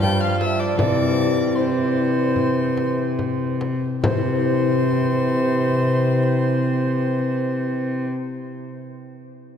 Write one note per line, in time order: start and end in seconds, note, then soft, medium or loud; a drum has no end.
0.00 0.79 G2 medium
0.00 0.83 G2 medium
0.00 0.81 F4 medium
0.00 0.76 G4 medium
0.00 0.82 B4 medium
0.00 0.21 G5 loud
0.00 0.23 G6 loud
0.00 frame drum medium
0.04 0.81 F3 medium
0.21 0.41 F5 medium
0.21 0.40 F6 medium
0.40 0.47 F5 medium
0.40 0.61 E6 loud
0.40 frame drum medium
0.46 0.62 E5 medium
0.60 0.78 D5 medium
0.60 0.77 D6 medium
0.76 3.75 C3 medium
0.76 1.57 E3 medium
0.76 1.52 E4 medium
0.76 1.54 G4 medium
0.76 1.55 C5 medium
0.76 1.28 D5 medium
0.76 1.57 D6 loud
0.76 frame drum medium
0.80 4.02 C3 medium
1.54 4.16 E4 soft
1.54 4.23 G4 medium
1.54 4.31 C5 medium
1.54 3.57 C5 medium
1.54 3.60 C6 medium
1.58 3.61 E3 medium
2.36 frame drum soft
2.77 frame drum soft
3.19 frame drum soft
3.61 frame drum medium
4.03 8.06 C3 medium
4.03 8.07 C3 medium
4.03 8.06 E3 medium
4.03 8.07 C5 medium
4.03 8.06 C6 loud
4.03 frame drum medium
4.11 8.13 C4 medium
4.17 8.20 E4 medium
4.25 8.27 G4 medium
4.32 8.34 C5 medium
4.39 8.41 G5 medium